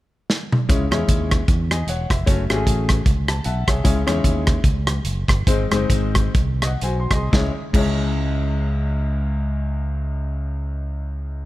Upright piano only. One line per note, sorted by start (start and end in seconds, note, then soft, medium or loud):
0.69 1.27 C#3 medium
0.69 0.83 G#3 medium
0.69 0.83 C#4 medium
0.69 0.84 E4 medium
0.69 0.83 C#5 medium
0.91 1.40 G#3 medium
0.91 1.40 C#4 medium
0.91 1.41 E4 medium
0.91 1.40 C#5 medium
1.71 1.87 D#5 soft
1.71 1.87 G#5 medium
1.89 2.10 C#5 medium
1.89 2.09 F#5 medium
2.11 2.48 E5 medium
2.26 2.41 A3 medium
2.26 2.41 C#4 medium
2.26 2.41 F#4 medium
2.26 2.41 C#5 medium
2.50 2.99 A3 medium
2.50 2.99 C#4 medium
2.50 2.99 F#4 medium
2.50 2.54 G4 medium
2.54 3.01 G#4 medium
3.29 3.44 A5 medium
3.45 3.66 E5 medium
3.45 3.66 F#5 medium
3.45 3.67 A5 medium
3.68 4.05 G#4 medium
3.68 3.83 C#5 medium
3.68 3.83 E5 medium
3.84 4.42 C#3 medium
3.84 3.98 G#3 medium
3.84 3.99 C#4 medium
3.84 3.98 E4 medium
3.84 3.99 C#5 medium
4.06 4.56 G#3 medium
4.06 4.56 C#4 medium
4.06 4.11 D#4 medium
4.06 4.56 C#5 medium
4.12 4.58 E4 medium
5.47 6.12 G#2 medium
5.47 5.62 G#3 medium
5.47 5.62 C4 medium
5.47 5.62 D#4 medium
5.47 5.62 C5 medium
5.71 6.27 G#3 medium
5.71 6.27 C4 medium
5.71 6.27 D#4 medium
5.71 6.27 C5 medium
6.62 6.66 D#5 medium
6.67 6.82 F#5 medium
6.83 7.10 F#4 medium
6.83 7.10 C5 medium
6.83 6.98 G#5 medium
7.00 7.15 C6 medium
7.13 7.61 G#4 soft
7.13 7.61 D#5 medium
7.13 7.32 C6 medium
7.31 7.50 C#2 medium
7.31 7.48 G#3 medium
7.31 7.49 C#4 medium
7.31 7.50 E4 medium
7.35 7.51 C#5 medium
7.73 11.45 C#2 medium
7.73 11.45 G#3 medium
7.73 11.45 C#4 medium
7.73 11.45 E4 medium
7.78 11.45 C#5 medium